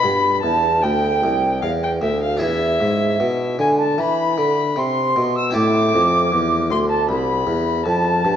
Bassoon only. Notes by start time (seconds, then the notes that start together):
0.04 G2
0.44 E2
0.83 D2
1.23 C2
1.63 E2
2.02 D2
2.42 E2
2.81 G#2
3.20 B2
3.59 D3
3.99 E3
4.38 D3
4.78 C3
5.17 B2
5.56 A2
5.95 F2
6.33 E2
6.71 D2
7.08 C2
7.47 E2
7.86 F2
8.25 G2